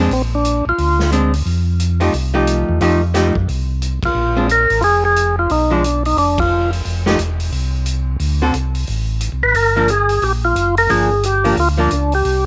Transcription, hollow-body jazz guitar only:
0, 0, Header, 1, 2, 480
1, 0, Start_track
1, 0, Tempo, 336889
1, 161, Time_signature, 4, 2, 24, 8
1, 17762, End_track
2, 0, Start_track
2, 0, Title_t, "Hollow-body jazz guitar"
2, 0, Program_c, 0, 26
2, 0, Note_on_c, 0, 56, 63
2, 0, Note_on_c, 0, 60, 58
2, 0, Note_on_c, 0, 62, 68
2, 143, Note_off_c, 0, 56, 0
2, 146, Note_off_c, 0, 60, 0
2, 150, Note_off_c, 0, 62, 0
2, 1596, Note_on_c, 0, 56, 51
2, 1607, Note_on_c, 0, 60, 50
2, 1614, Note_on_c, 0, 62, 51
2, 1868, Note_off_c, 0, 56, 0
2, 1874, Note_off_c, 0, 60, 0
2, 1877, Note_off_c, 0, 62, 0
2, 2852, Note_on_c, 0, 53, 49
2, 2863, Note_on_c, 0, 57, 55
2, 2867, Note_on_c, 0, 63, 53
2, 2869, Note_on_c, 0, 67, 53
2, 3018, Note_off_c, 0, 53, 0
2, 3024, Note_off_c, 0, 57, 0
2, 3025, Note_off_c, 0, 63, 0
2, 3026, Note_off_c, 0, 67, 0
2, 3330, Note_on_c, 0, 53, 52
2, 3334, Note_on_c, 0, 57, 51
2, 3341, Note_on_c, 0, 63, 55
2, 3346, Note_on_c, 0, 67, 60
2, 3959, Note_off_c, 0, 53, 0
2, 3961, Note_off_c, 0, 57, 0
2, 3964, Note_off_c, 0, 63, 0
2, 3967, Note_off_c, 0, 67, 0
2, 4002, Note_on_c, 0, 53, 61
2, 4015, Note_on_c, 0, 67, 63
2, 4016, Note_on_c, 0, 57, 60
2, 4017, Note_on_c, 0, 63, 64
2, 4271, Note_off_c, 0, 53, 0
2, 4278, Note_off_c, 0, 57, 0
2, 4278, Note_off_c, 0, 63, 0
2, 4278, Note_off_c, 0, 67, 0
2, 4477, Note_on_c, 0, 57, 53
2, 4478, Note_on_c, 0, 53, 48
2, 4490, Note_on_c, 0, 67, 50
2, 4491, Note_on_c, 0, 63, 49
2, 4748, Note_off_c, 0, 57, 0
2, 4749, Note_off_c, 0, 53, 0
2, 4755, Note_off_c, 0, 63, 0
2, 4755, Note_off_c, 0, 67, 0
2, 6220, Note_on_c, 0, 56, 49
2, 6221, Note_on_c, 0, 60, 49
2, 6233, Note_on_c, 0, 62, 57
2, 6382, Note_off_c, 0, 56, 0
2, 6382, Note_off_c, 0, 60, 0
2, 6389, Note_off_c, 0, 62, 0
2, 8129, Note_on_c, 0, 53, 46
2, 8139, Note_on_c, 0, 56, 52
2, 8143, Note_on_c, 0, 62, 60
2, 8297, Note_off_c, 0, 53, 0
2, 8302, Note_off_c, 0, 56, 0
2, 8304, Note_off_c, 0, 62, 0
2, 10060, Note_on_c, 0, 53, 44
2, 10064, Note_on_c, 0, 57, 59
2, 10074, Note_on_c, 0, 67, 54
2, 10075, Note_on_c, 0, 63, 57
2, 10222, Note_off_c, 0, 53, 0
2, 10225, Note_off_c, 0, 57, 0
2, 10229, Note_off_c, 0, 67, 0
2, 10230, Note_off_c, 0, 63, 0
2, 11994, Note_on_c, 0, 50, 42
2, 11996, Note_on_c, 0, 66, 44
2, 11997, Note_on_c, 0, 60, 51
2, 12009, Note_on_c, 0, 69, 50
2, 12150, Note_off_c, 0, 50, 0
2, 12151, Note_off_c, 0, 66, 0
2, 12152, Note_off_c, 0, 60, 0
2, 12157, Note_off_c, 0, 69, 0
2, 13909, Note_on_c, 0, 53, 43
2, 13918, Note_on_c, 0, 58, 51
2, 13925, Note_on_c, 0, 62, 56
2, 14068, Note_off_c, 0, 53, 0
2, 14072, Note_off_c, 0, 58, 0
2, 14076, Note_off_c, 0, 62, 0
2, 15520, Note_on_c, 0, 53, 46
2, 15529, Note_on_c, 0, 58, 46
2, 15533, Note_on_c, 0, 62, 50
2, 15792, Note_off_c, 0, 53, 0
2, 15797, Note_off_c, 0, 58, 0
2, 15799, Note_off_c, 0, 62, 0
2, 16304, Note_on_c, 0, 53, 59
2, 16317, Note_on_c, 0, 58, 62
2, 16321, Note_on_c, 0, 62, 67
2, 16467, Note_off_c, 0, 53, 0
2, 16473, Note_off_c, 0, 58, 0
2, 16475, Note_off_c, 0, 62, 0
2, 16777, Note_on_c, 0, 53, 57
2, 16788, Note_on_c, 0, 58, 54
2, 16801, Note_on_c, 0, 62, 59
2, 16943, Note_off_c, 0, 53, 0
2, 16949, Note_off_c, 0, 58, 0
2, 16955, Note_off_c, 0, 62, 0
2, 17762, End_track
0, 0, End_of_file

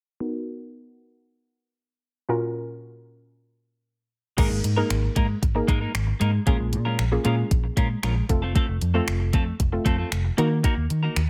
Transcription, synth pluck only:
0, 0, Header, 1, 2, 480
1, 0, Start_track
1, 0, Tempo, 521739
1, 190, Time_signature, 4, 2, 24, 8
1, 10393, End_track
2, 0, Start_track
2, 0, Title_t, "Synth pluck"
2, 0, Program_c, 0, 84
2, 187, Note_on_c, 0, 59, 73
2, 191, Note_on_c, 0, 63, 67
2, 195, Note_on_c, 0, 66, 66
2, 197, Note_on_c, 0, 70, 78
2, 2072, Note_off_c, 0, 59, 0
2, 2074, Note_off_c, 0, 63, 0
2, 2076, Note_off_c, 0, 66, 0
2, 2077, Note_off_c, 0, 70, 0
2, 2103, Note_on_c, 0, 46, 73
2, 2106, Note_on_c, 0, 61, 66
2, 2107, Note_on_c, 0, 65, 68
2, 2111, Note_on_c, 0, 66, 68
2, 2113, Note_on_c, 0, 70, 78
2, 3753, Note_off_c, 0, 46, 0
2, 3755, Note_off_c, 0, 61, 0
2, 3755, Note_off_c, 0, 65, 0
2, 3757, Note_off_c, 0, 66, 0
2, 3758, Note_off_c, 0, 70, 0
2, 4027, Note_on_c, 0, 58, 90
2, 4029, Note_on_c, 0, 63, 80
2, 4031, Note_on_c, 0, 68, 74
2, 4032, Note_on_c, 0, 70, 98
2, 4265, Note_off_c, 0, 58, 0
2, 4267, Note_off_c, 0, 63, 0
2, 4267, Note_off_c, 0, 68, 0
2, 4268, Note_off_c, 0, 70, 0
2, 4388, Note_on_c, 0, 58, 88
2, 4391, Note_on_c, 0, 63, 78
2, 4391, Note_on_c, 0, 68, 82
2, 4392, Note_on_c, 0, 70, 95
2, 4863, Note_off_c, 0, 58, 0
2, 4864, Note_off_c, 0, 63, 0
2, 4864, Note_off_c, 0, 68, 0
2, 4865, Note_off_c, 0, 70, 0
2, 5107, Note_on_c, 0, 58, 83
2, 5109, Note_on_c, 0, 63, 76
2, 5110, Note_on_c, 0, 68, 75
2, 5112, Note_on_c, 0, 70, 90
2, 5661, Note_off_c, 0, 58, 0
2, 5662, Note_off_c, 0, 63, 0
2, 5663, Note_off_c, 0, 68, 0
2, 5663, Note_off_c, 0, 70, 0
2, 5948, Note_on_c, 0, 58, 85
2, 5949, Note_on_c, 0, 61, 78
2, 5951, Note_on_c, 0, 65, 81
2, 5953, Note_on_c, 0, 68, 99
2, 6344, Note_off_c, 0, 58, 0
2, 6344, Note_off_c, 0, 61, 0
2, 6345, Note_off_c, 0, 65, 0
2, 6346, Note_off_c, 0, 68, 0
2, 6547, Note_on_c, 0, 58, 86
2, 6549, Note_on_c, 0, 61, 81
2, 6550, Note_on_c, 0, 65, 80
2, 6552, Note_on_c, 0, 68, 101
2, 6628, Note_off_c, 0, 58, 0
2, 6629, Note_off_c, 0, 61, 0
2, 6629, Note_off_c, 0, 65, 0
2, 6630, Note_off_c, 0, 68, 0
2, 6666, Note_on_c, 0, 58, 90
2, 6668, Note_on_c, 0, 61, 81
2, 6670, Note_on_c, 0, 65, 83
2, 6671, Note_on_c, 0, 68, 102
2, 7299, Note_off_c, 0, 58, 0
2, 7300, Note_off_c, 0, 61, 0
2, 7301, Note_off_c, 0, 65, 0
2, 7302, Note_off_c, 0, 68, 0
2, 7628, Note_on_c, 0, 57, 88
2, 7629, Note_on_c, 0, 60, 83
2, 7631, Note_on_c, 0, 65, 86
2, 7634, Note_on_c, 0, 69, 100
2, 8109, Note_off_c, 0, 57, 0
2, 8110, Note_off_c, 0, 60, 0
2, 8111, Note_off_c, 0, 65, 0
2, 8112, Note_off_c, 0, 69, 0
2, 8227, Note_on_c, 0, 57, 88
2, 8229, Note_on_c, 0, 60, 79
2, 8231, Note_on_c, 0, 65, 77
2, 8233, Note_on_c, 0, 69, 94
2, 8702, Note_off_c, 0, 57, 0
2, 8703, Note_off_c, 0, 60, 0
2, 8704, Note_off_c, 0, 65, 0
2, 8705, Note_off_c, 0, 69, 0
2, 8947, Note_on_c, 0, 57, 88
2, 8948, Note_on_c, 0, 60, 75
2, 8950, Note_on_c, 0, 65, 75
2, 8950, Note_on_c, 0, 69, 88
2, 9501, Note_off_c, 0, 57, 0
2, 9502, Note_off_c, 0, 60, 0
2, 9502, Note_off_c, 0, 65, 0
2, 9502, Note_off_c, 0, 69, 0
2, 9548, Note_on_c, 0, 58, 89
2, 9549, Note_on_c, 0, 63, 83
2, 9550, Note_on_c, 0, 66, 84
2, 9553, Note_on_c, 0, 70, 100
2, 10221, Note_off_c, 0, 58, 0
2, 10222, Note_off_c, 0, 63, 0
2, 10222, Note_off_c, 0, 66, 0
2, 10224, Note_off_c, 0, 70, 0
2, 10393, End_track
0, 0, End_of_file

